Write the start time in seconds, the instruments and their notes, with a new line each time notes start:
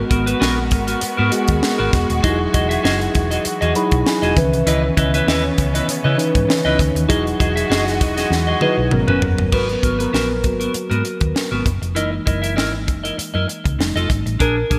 Already playing: tine electric piano G#3 B3 F#4 A#4, string section G#3 B3 F#4 A#4
0.10 fingered electric bass G#1, clean electric guitar B3 F#4 A#4, kick, closed hi-hat
0.26 clean electric guitar B3 F#4 B4, closed hi-hat
0.40 fingered electric bass A#1, clean electric guitar B3 F#4 A#4, snare
0.57 muted clean electric guitar stroke
0.71 fingered electric bass G#1, muted clean electric guitar stroke, kick, closed hi-hat
0.87 clean electric guitar B3 F#4 A#4, closed hi-hat
1.01 muted clean electric guitar stroke, muted fingered electric bass stroke, closed hi-hat
1.17 fingered electric bass G#2, clean electric guitar B3 F#4 A#4
1.32 tine electric piano G#3 B3 F#4 G#4, muted clean electric guitar stroke, closed hi-hat
1.48 fingered electric bass D#2, muted clean electric guitar stroke, kick, closed hi-hat
1.62 muted clean electric guitar stroke, snare
1.78 fingered electric bass G#1, clean electric guitar B3 F#4 A#4
1.92 fingered electric bass E1, muted clean electric guitar stroke, kick, snare, closed hi-hat
2.09 fingered electric bass D#1, muted clean electric guitar stroke, closed hi-hat
2.23 fingered electric bass E1, string section E3, tine electric piano F#3 D#4 E4 G4, clean electric guitar F#4 G#4 D#5, kick, closed hi-hat
2.30 tine electric piano G#4
2.39 muted clean electric guitar stroke
2.53 fingered electric bass E1, clean electric guitar F#4 G#4 D#5, kick, closed hi-hat
2.69 clean electric guitar F#4 G#4 E5, closed hi-hat
2.83 fingered electric bass F#1, clean electric guitar F#4 G#4 D#5, snare
3.00 muted clean electric guitar stroke, closed hi-hat
3.14 fingered electric bass E1, muted clean electric guitar stroke, kick, closed hi-hat
3.31 clean electric guitar F#4 G#4 D#5, closed hi-hat
3.44 muted clean electric guitar stroke, muted fingered electric bass stroke, closed hi-hat
3.61 fingered electric bass E2, clean electric guitar F#4 G#4 D#5, closed hi-hat
3.75 tine electric piano F#3 D#4 E4 G#4 B5, muted clean electric guitar stroke, closed hi-hat
3.91 fingered electric bass B1, muted clean electric guitar stroke, kick, closed hi-hat
4.06 tine electric piano G#5, muted clean electric guitar stroke, snare
4.22 fingered electric bass E1, clean electric guitar F#4 G#4 D#5, closed hi-hat
4.36 fingered electric bass C#2, string section C#3 B3 C#4, tine electric piano D#3 E3 C#4 B4 E5, muted clean electric guitar stroke, kick, closed hi-hat
4.53 fingered electric bass C2, muted clean electric guitar stroke, closed hi-hat
4.66 fingered electric bass C#2, clean electric guitar E4 B4 D#5, closed hi-hat
4.84 muted clean electric guitar stroke
4.97 fingered electric bass C#2, clean electric guitar E4 B4 D#5, kick, closed hi-hat
5.14 clean electric guitar E4 B4 E5, closed hi-hat
5.27 fingered electric bass D#2, clean electric guitar E4 B4 D#5, snare
5.44 muted clean electric guitar stroke
5.58 fingered electric bass C#2, muted clean electric guitar stroke, kick, closed hi-hat
5.74 clean electric guitar E4 B4 D#5, closed hi-hat
5.88 muted fingered electric bass stroke, muted clean electric guitar stroke, closed hi-hat
6.04 fingered electric bass C#3, clean electric guitar E4 B4 D#5
6.17 tine electric piano E3 C#4 D#4 B4, muted clean electric guitar stroke, closed hi-hat
6.35 fingered electric bass G#2, muted clean electric guitar stroke, kick, closed hi-hat
6.48 muted clean electric guitar stroke, snare
6.65 fingered electric bass C#2, clean electric guitar E4 B4 D#5
6.79 fingered electric bass D2, kick, closed hi-hat
6.95 fingered electric bass D#2, muted clean electric guitar stroke, closed hi-hat
7.08 fingered electric bass E1, string section E3 G#3 F#4 D#5, tine electric piano F#3 D#4 E4 G#4, clean electric guitar F#4 G#4 D#5, kick, closed hi-hat
7.26 muted clean electric guitar stroke, closed hi-hat
7.40 fingered electric bass E1, clean electric guitar F#4 G#4 D#5, kick, closed hi-hat
7.56 clean electric guitar F#4 G#4 E5, closed hi-hat
7.69 fingered electric bass F#1, clean electric guitar F#4 G#4 D#5, snare
7.86 muted clean electric guitar stroke, snare, closed hi-hat
8.00 fingered electric bass E1, muted clean electric guitar stroke, kick, closed hi-hat
8.17 clean electric guitar F#4 G#4 D#5, snare, closed hi-hat
8.30 fingered electric bass E2, muted clean electric guitar stroke, snare
8.47 clean electric guitar F#4 G#4 D#5
8.61 tine electric piano F#3 D#4 E4 B4, clean electric guitar F#4 G#4 D#5, high tom
8.77 fingered electric bass B1, muted clean electric guitar stroke
8.91 fingered electric bass G#1, string section C#3 B3 A#4, tine electric piano F#3 B3 C#4 A#4, muted clean electric guitar stroke, mid tom
9.08 fingered electric bass F#1, clean electric guitar C#4 F#4 B4, mid tom
9.22 fingered electric bass F#1, muted clean electric guitar stroke, floor tom
9.38 fingered electric bass G1, muted clean electric guitar stroke, floor tom
9.52 fingered electric bass G#1, tine electric piano F#3 B3 A#4 B4, clean electric guitar B3 F#4 A#4, kick, crash
9.69 muted clean electric guitar stroke, closed hi-hat
9.82 fingered electric bass G#1, clean electric guitar B3 F#4 A#4, kick, closed hi-hat
9.99 clean electric guitar B3 F#4 B4, tine electric piano A#4, closed hi-hat
10.13 fingered electric bass A#1, clean electric guitar B3 F#4 A#4, snare
10.29 muted clean electric guitar stroke
10.43 fingered electric bass G#1, tine electric piano F#3 A#3 B3 F#4, muted clean electric guitar stroke, kick, closed hi-hat
10.60 clean electric guitar B3 F#4 A#4, closed hi-hat
10.74 muted clean electric guitar stroke, muted fingered electric bass stroke, closed hi-hat
10.90 fingered electric bass G#2, clean electric guitar B3 F#4 A#4, closed hi-hat
11.04 muted clean electric guitar stroke, closed hi-hat
11.20 fingered electric bass D#2, muted clean electric guitar stroke, kick, closed hi-hat
11.35 muted clean electric guitar stroke, snare
11.51 fingered electric bass G#1, clean electric guitar B3 F#4 A#4
11.65 fingered electric bass F#1, muted clean electric guitar stroke, kick, closed hi-hat
11.82 fingered electric bass F1, muted clean electric guitar stroke, closed hi-hat
11.95 fingered electric bass F#1, tine electric piano E3 G#3 A#3 D#4, clean electric guitar E4 A#4 D#5, closed hi-hat
12.12 muted clean electric guitar stroke
12.26 fingered electric bass F#1, clean electric guitar E4 A#4 D#5, kick, closed hi-hat
12.42 clean electric guitar E4 A#4 E5, closed hi-hat
12.56 fingered electric bass G#1, clean electric guitar E4 A#4 D#5, snare
12.73 muted clean electric guitar stroke
12.87 fingered electric bass F#1, muted clean electric guitar stroke, kick, closed hi-hat
13.04 clean electric guitar E4 A#4 D#5, closed hi-hat
13.18 muted clean electric guitar stroke, muted fingered electric bass stroke, closed hi-hat
13.34 fingered electric bass F#2, clean electric guitar E4 A#4 D#5
13.48 muted clean electric guitar stroke, closed hi-hat
13.64 fingered electric bass C#2, muted clean electric guitar stroke, kick, closed hi-hat
13.79 fingered electric bass F1, tine electric piano G3 A3 D#4, muted clean electric guitar stroke, snare
13.95 fingered electric bass F1, clean electric guitar F4 A4 D#5, closed hi-hat
14.09 fingered electric bass G#1, muted clean electric guitar stroke, kick, closed hi-hat
14.26 fingered electric bass A1, muted clean electric guitar stroke, closed hi-hat
14.39 fingered electric bass A#1, clean electric guitar D4 G#4 A#4, tine electric piano A#4, kick, closed hi-hat
14.57 muted clean electric guitar stroke
14.70 fingered electric bass A#1, clean electric guitar D4 G#4 A#4, kick, closed hi-hat